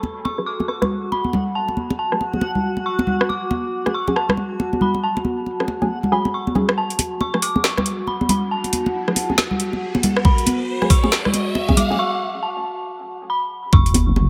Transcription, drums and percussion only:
0.03 muted conga soft
0.03 high conga medium
0.25 muted conga medium
0.38 cross-stick soft
0.60 muted conga soft
0.60 high conga medium
0.68 cross-stick soft
0.82 cross-stick medium
0.82 muted conga medium
0.82 low conga medium
1.12 muted conga soft
1.24 high conga medium
1.33 muted conga medium
1.33 low conga medium
1.68 muted conga soft
1.77 high conga medium
1.90 muted conga medium
2.12 cross-stick soft
2.21 muted conga soft
2.33 high conga medium
2.41 muted conga medium
2.55 low conga medium
2.77 muted conga soft
2.99 muted conga medium
2.99 high conga medium
3.07 low conga medium
3.21 cross-stick medium
3.30 muted conga soft
3.51 muted conga medium
3.51 high conga medium
3.86 cross-stick soft
3.86 muted conga soft
4.08 muted conga medium
4.08 high conga medium
4.16 cross-stick soft
4.29 cross-stick medium
4.29 low conga medium
4.37 muted conga soft
4.60 muted conga medium
4.73 high conga medium
4.81 low conga medium
4.94 muted conga soft
5.17 muted conga medium
5.25 high conga medium
5.46 muted conga soft
5.60 cross-stick soft
5.68 muted conga medium
5.82 high conga medium
6.03 muted conga soft
6.03 low conga medium
6.25 muted conga medium
6.47 high conga medium
6.55 muted conga soft
6.55 low conga medium
6.69 cross-stick medium
6.90 closed hi-hat soft
6.99 closed hi-hat medium
6.99 muted conga soft
6.99 high conga medium
7.21 muted conga medium
7.34 cross-stick soft
7.42 open hi-hat medium
7.56 muted conga soft
7.56 high conga medium
7.64 cross-stick medium
7.64 snare loud
7.77 cross-stick medium
7.77 muted conga medium
7.77 low conga medium
7.86 closed hi-hat medium
8.07 muted conga medium
8.21 high conga medium
8.29 closed hi-hat medium
8.29 muted conga medium
8.29 low conga loud
8.64 closed hi-hat soft
8.64 muted conga soft
8.73 closed hi-hat medium
8.73 high conga medium
8.86 muted conga medium
9.08 cross-stick soft
9.16 open hi-hat medium
9.16 muted conga medium
9.30 high conga medium
9.38 snare loud
9.38 muted conga medium
9.51 low conga medium
9.60 closed hi-hat medium
9.73 muted conga soft
9.95 muted conga medium
9.95 high conga medium
10.03 closed hi-hat medium
10.03 low conga medium
10.17 cross-stick medium
10.25 kick loud
10.25 muted conga medium
10.38 closed hi-hat soft
10.46 closed hi-hat medium
10.46 muted conga medium
10.46 high conga medium
10.82 cross-stick soft
10.82 muted conga medium
10.90 kick loud
10.90 open hi-hat medium
11.03 muted conga medium
11.03 high conga medium
11.12 cross-stick soft
11.12 snare loud
11.25 cross-stick medium
11.25 low conga medium
11.34 closed hi-hat medium
11.34 muted conga soft
11.55 muted conga medium
11.69 kick medium
11.69 high conga loud
11.77 closed hi-hat medium
11.77 low conga medium
11.92 muted conga medium
13.73 kick loud
13.86 closed hi-hat soft
13.94 closed hi-hat medium
13.94 muted conga medium
13.94 high conga loud
14.16 muted conga medium

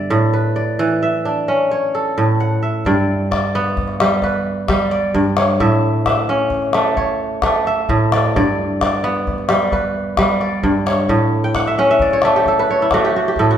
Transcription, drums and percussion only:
2.85 calabash thump medium
3.32 calabash thump medium
3.32 calabash click medium
3.67 calabash click soft
3.77 calabash thump medium
3.77 calabash click soft
3.88 calabash click soft
4.00 calabash click medium
4.11 calabash click soft
4.22 calabash thump medium
4.68 calabash thump medium
4.68 calabash click medium
4.79 calabash click soft
5.14 calabash thump medium
5.37 calabash click medium
5.48 calabash click soft
5.60 calabash thump medium
6.06 calabash thump medium
6.06 calabash click medium
6.40 calabash click soft
6.50 calabash thump medium
6.50 calabash click soft
6.62 calabash click soft
6.73 calabash click medium
6.86 calabash click soft
6.97 calabash thump medium
7.42 calabash thump medium
7.42 calabash click medium
7.55 calabash click soft
7.89 calabash thump medium
8.12 calabash click medium
8.24 calabash click soft
8.36 calabash thump medium
8.81 calabash thump medium
8.81 calabash click medium
9.15 calabash click soft
9.27 calabash thump medium
9.27 calabash click soft
9.38 calabash click soft
9.49 calabash click medium
9.62 calabash click soft
9.72 calabash thump medium
10.17 calabash thump medium
10.17 calabash click medium
10.29 calabash click soft
10.63 calabash thump medium
10.87 calabash click medium
10.99 calabash click soft
11.09 calabash thump medium
11.55 calabash thump medium
11.55 calabash click medium
11.66 calabash click soft
12.00 calabash thump medium
12.11 calabash click soft
12.22 calabash click medium
12.46 calabash thump medium
12.46 calabash click soft
12.68 calabash click soft
12.80 calabash click soft
12.91 calabash thump medium
12.91 calabash click medium
13.25 calabash click soft
13.36 calabash thump medium

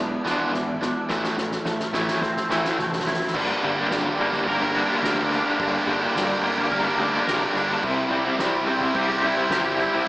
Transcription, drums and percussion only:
0.26 snare medium
0.26 ride medium
0.53 kick medium
0.53 snare medium
0.53 ride medium
0.82 snare loud
0.82 ride medium
1.09 kick loud
1.09 snare loud
1.24 snare medium
1.38 snare medium
1.51 snare medium
1.65 snare loud
1.80 snare loud
1.93 snare loud
2.08 snare loud
2.22 kick loud
2.22 snare loud
2.36 snare loud
2.50 snare loud
2.65 snare loud
2.78 kick medium
2.78 snare loud
2.92 snare loud
2.99 snare loud
3.06 snare loud
3.13 snare loud
3.20 snare loud
3.27 snare loud
3.35 kick loud
3.35 crash loud
3.63 ride medium
3.91 snare loud
3.91 ride loud
4.19 ride medium
4.33 kick loud
4.33 snare soft
4.47 kick loud
4.47 ride loud
4.76 ride medium
5.04 snare loud
5.04 ride loud
5.32 snare soft
5.32 ride medium
5.60 kick loud
5.60 ride loud
5.88 ride medium
6.16 snare loud
6.16 ride loud
6.44 ride medium
6.58 kick loud
6.72 kick loud
6.72 ride loud
6.99 ride medium
7.27 snare loud
7.27 ride loud
7.55 snare soft
7.55 ride medium
7.83 kick loud
7.83 crash loud
8.11 ride medium
8.39 snare loud
8.39 ride loud
8.67 ride medium
8.81 kick loud
8.95 kick loud
8.95 ride loud
9.23 ride medium
9.51 snare loud
9.51 ride loud
9.79 snare soft
9.79 ride loud

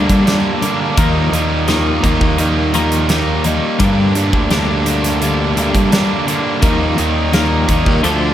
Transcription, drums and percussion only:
0.09 kick medium
0.09 closed hi-hat medium
0.27 snare loud
0.27 closed hi-hat medium
0.62 closed hi-hat medium
0.97 kick loud
0.97 closed hi-hat medium
1.33 closed hi-hat medium
1.68 snare medium
1.68 closed hi-hat medium
2.04 kick medium
2.04 closed hi-hat medium
2.21 kick medium
2.38 closed hi-hat medium
2.74 closed hi-hat medium
2.92 closed hi-hat medium
3.09 snare loud
3.09 closed hi-hat medium
3.44 closed hi-hat medium
3.80 kick loud
3.80 closed hi-hat medium
4.15 closed hi-hat medium
4.33 kick medium
4.51 snare medium
4.51 closed hi-hat medium
4.86 closed hi-hat medium
5.04 snare soft
5.04 closed hi-hat medium
5.22 closed hi-hat medium
5.57 closed hi-hat medium
5.75 kick medium
5.75 closed hi-hat medium
5.92 snare loud
5.92 closed hi-hat medium
6.28 closed hi-hat medium
6.62 kick loud
6.62 closed hi-hat medium
6.98 closed hi-hat medium
7.33 snare loud
7.33 closed hi-hat medium
7.69 kick medium
7.69 closed hi-hat medium
7.86 kick medium
8.04 closed hi-hat medium

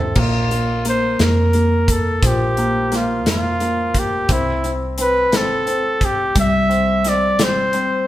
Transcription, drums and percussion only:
0.15 kick medium
0.15 crash medium
0.51 closed hi-hat soft
0.85 closed hi-hat medium
1.19 snare medium
1.19 closed hi-hat medium
1.53 closed hi-hat soft
1.88 kick medium
1.88 closed hi-hat medium
2.23 kick medium
2.23 closed hi-hat medium
2.57 closed hi-hat soft
2.92 snare soft
2.92 closed hi-hat medium
3.26 snare medium
3.26 closed hi-hat medium
3.60 closed hi-hat soft
3.94 kick medium
3.94 closed hi-hat medium
4.29 kick medium
4.29 closed hi-hat medium
4.64 closed hi-hat soft
4.98 closed hi-hat medium
5.32 snare medium
5.32 closed hi-hat medium
5.67 closed hi-hat soft
6.01 kick medium
6.01 closed hi-hat medium
6.35 kick medium
6.35 closed hi-hat medium
6.71 closed hi-hat soft
7.04 snare soft
7.04 closed hi-hat medium
7.39 snare loud
7.39 closed hi-hat medium
7.73 closed hi-hat soft

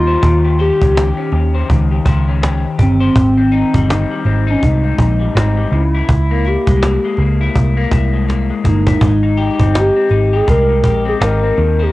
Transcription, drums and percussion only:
0.23 cajon bass loud
0.59 cajon slap soft
0.81 cajon bass medium
0.97 cajon slap loud
1.32 cajon slap soft
1.70 cajon bass medium
2.06 cajon bass medium
2.43 cajon slap loud
2.79 cajon bass medium
3.16 cajon bass loud
3.52 cajon slap soft
3.74 cajon bass medium
3.90 cajon slap loud
4.25 cajon slap soft
4.63 cajon bass medium
4.99 cajon bass loud
5.37 cajon slap loud
5.73 cajon slap soft
6.09 cajon bass loud
6.45 cajon slap soft
6.67 cajon bass medium
6.83 cajon slap loud
7.17 cajon slap soft
7.55 cajon bass medium
7.91 cajon bass loud
7.91 cajon slap soft
8.28 cajon slap medium
8.65 cajon bass medium
8.87 cajon bass loud
9.01 cajon bass loud
9.37 cajon slap soft
9.60 cajon bass medium
9.75 cajon slap loud
10.09 cajon slap soft
10.48 cajon bass medium
10.84 cajon bass medium
11.22 cajon slap loud
11.58 cajon slap soft

